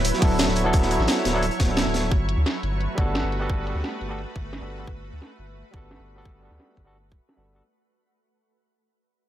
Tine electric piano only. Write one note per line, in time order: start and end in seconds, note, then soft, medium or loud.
0.19 0.62 F#3 loud
0.19 0.62 B3 medium
0.19 0.63 D4 medium
0.19 0.64 E4 medium
0.25 0.64 A4 loud
0.64 0.87 F#3 medium
0.64 0.88 B3 medium
0.64 0.89 D4 medium
0.64 0.89 E4 medium
0.64 0.89 A4 loud
0.88 1.31 F#3 medium
0.88 1.31 B3 medium
0.88 1.32 D4 medium
0.92 1.33 E4 medium
0.92 1.33 A4 medium
1.33 1.44 F#3 medium
1.33 1.44 B3 medium
1.33 1.44 D4 medium
1.33 1.45 E4 medium
1.33 1.45 A4 loud
1.66 2.09 F#3 medium
1.66 2.10 B3 medium
1.66 2.11 D4 medium
1.66 2.11 E4 medium
1.71 2.12 A4 medium
2.95 3.37 G3 medium
2.95 3.38 B3 medium
2.95 3.39 D4 medium
2.99 3.40 F#4 medium
2.99 3.40 A4 loud
3.40 3.63 G3 medium
3.40 3.64 B3 medium
3.40 3.65 D4 medium
3.40 3.65 F#4 medium
3.40 3.65 A4 loud
3.64 4.07 G3 medium
3.64 4.07 B3 medium
3.64 4.08 D4 medium
3.64 4.09 F#4 medium
3.70 4.09 A4 medium
4.09 4.20 G3 medium
4.09 4.20 B3 medium
4.09 4.20 D4 medium
4.09 4.21 F#4 medium
4.09 4.21 A4 medium
4.60 4.76 G3 medium
4.60 4.76 B3 medium
4.60 4.77 D4 medium
4.60 4.77 F#4 medium
4.60 4.77 A4 medium
4.78 4.88 G3 medium
4.78 4.89 B3 medium
4.78 4.89 D4 medium
4.78 4.89 F#4 medium
4.78 4.90 A4 medium
5.71 6.13 G3 medium
5.71 6.14 B3 medium
5.71 6.15 D4 medium
5.71 6.15 F#4 medium
5.76 6.16 A4 loud
6.16 6.39 G3 medium
6.16 6.40 B3 medium
6.16 6.41 D4 medium
6.16 6.41 F#4 medium
6.16 6.41 A4 medium
6.40 6.82 G3 medium
6.40 6.83 B3 medium
6.40 6.84 D4 medium
6.40 6.84 F#4 medium
6.45 6.85 A4 medium
6.84 6.95 G3 medium
6.84 6.96 B3 medium
6.84 6.96 D4 medium
6.84 6.96 F#4 medium
6.84 6.97 A4 medium
7.36 7.52 G3 medium
7.36 7.52 B3 medium
7.36 7.53 D4 medium
7.36 7.53 F#4 medium
7.36 7.53 A4 medium
7.53 7.62 G3 medium
7.53 7.62 B3 medium
7.53 7.62 D4 medium
7.53 7.63 F#4 medium
7.53 7.63 A4 medium